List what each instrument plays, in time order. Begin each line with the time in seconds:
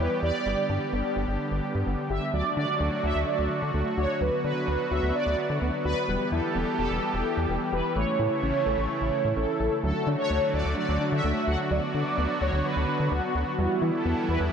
Already playing: analog synth pad E3 G3 B3 G4
0.00 synth arpeggio sound B3, analog polysynth B4
0.23 analog synth bass E2, synth arpeggio sound G4, analog polysynth D5
0.46 analog synth bass G1, analog synth pad D3, synth arpeggio sound G3
0.70 analog synth bass G2, synth arpeggio sound D4
0.93 analog synth bass G1, synth arpeggio sound B3
1.16 analog synth bass G1, synth arpeggio sound G4
1.28 analog synth bass G1
1.52 analog synth bass G1
1.75 analog synth bass G2
1.87 analog synth bass G1, synth arpeggio sound B3
2.10 analog synth bass G1, synth arpeggio sound G4, analog polysynth E5
2.33 analog synth bass D2, synth arpeggio sound F#3, analog synth pad F#3 A3 F#4, analog polysynth D5
2.57 analog synth bass D3, synth arpeggio sound D4, analog polysynth D5
2.80 analog synth bass D2, synth arpeggio sound A3
3.04 analog synth bass D2, synth arpeggio sound F#4, analog polysynth E5
3.15 analog synth bass D2
3.27 analog polysynth D5
3.39 analog synth bass D2
3.62 analog synth bass D3
3.74 analog synth bass D2, synth arpeggio sound A3
3.98 analog synth bass D2, synth arpeggio sound F#4, analog polysynth C#5
4.21 analog synth bass D2, analog synth pad F#3 B3, synth arpeggio sound F#3, analog polysynth B4
4.44 analog synth bass D3, synth arpeggio sound D4, analog polysynth B4
4.68 analog synth bass D2, synth arpeggio sound B3
4.91 analog synth bass D2, synth arpeggio sound F#4, analog polysynth E5
5.03 analog synth bass D2
5.15 analog polysynth D5
5.26 analog synth bass D2
5.50 analog synth bass D3
5.62 analog synth bass D2, synth arpeggio sound B3
5.85 analog synth bass D2, synth arpeggio sound F#4, analog polysynth B4
6.08 analog synth bass E1, analog synth pad E3 G3 G4, synth arpeggio sound G3
6.32 analog synth bass E2, synth arpeggio sound E4, analog polysynth A4
6.55 analog synth bass E1, synth arpeggio sound B3
6.79 analog synth bass E1, synth arpeggio sound G4, analog polysynth A4
6.90 analog synth bass E1
7.14 analog synth bass E1
7.26 analog polysynth G4
7.37 analog synth bass E2
7.49 analog synth bass E1, synth arpeggio sound B3
7.73 analog synth bass E1, synth arpeggio sound G4, analog polysynth B4
7.96 analog synth bass A1, analog synth pad C#3 A3 E4, synth arpeggio sound A3, analog polysynth C#5
8.19 analog synth bass A2, synth arpeggio sound E4
8.43 analog synth bass A1, synth arpeggio sound C#4
8.66 analog synth bass A1, synth arpeggio sound A4
8.78 analog synth bass A1
9.01 analog synth bass A1
9.25 analog synth bass A2
9.37 analog synth bass A1, synth arpeggio sound C#4, analog polysynth A4
9.60 analog synth bass A1, synth arpeggio sound A4
9.83 analog synth bass D2, analog synth pad D3 F#3 A3 F#4, synth arpeggio sound F#3, analog polysynth A4
10.07 analog synth bass D3, synth arpeggio sound D4
10.19 analog polysynth C#5
10.30 analog synth bass D2, synth arpeggio sound A3
10.54 analog synth bass D2, analog polysynth D5
10.66 analog synth bass D2
10.77 synth arpeggio sound F#3, analog polysynth D5
10.89 analog synth bass D2
11.01 synth arpeggio sound D4
11.12 analog synth bass D3, analog polysynth E5
11.24 analog synth bass D2, synth arpeggio sound A3
11.47 analog synth bass D2, synth arpeggio sound F#4, analog polysynth F#5
11.71 analog synth bass D2, analog synth pad D3 B3, synth arpeggio sound F#3, analog polysynth D5
11.94 analog synth bass D3, synth arpeggio sound D4
12.18 analog synth bass D2, synth arpeggio sound B3
12.41 analog synth bass D2, analog polysynth C#5
12.53 analog synth bass D2
12.65 synth arpeggio sound F#3, analog polysynth B4
12.77 analog synth bass D2
12.88 synth arpeggio sound D4
13.00 analog synth bass D3
13.12 analog synth bass D2, synth arpeggio sound B3, analog polysynth F#4
13.35 analog synth bass D2, synth arpeggio sound F#4
13.58 analog synth bass E2, analog synth pad E3 G3 E4, synth arpeggio sound G3, analog polysynth F#4
13.82 analog synth bass E3, synth arpeggio sound E4
13.94 analog polysynth A4
14.05 analog synth bass E2, synth arpeggio sound B3
14.29 analog synth bass E2, analog polysynth B4
14.40 analog synth bass E2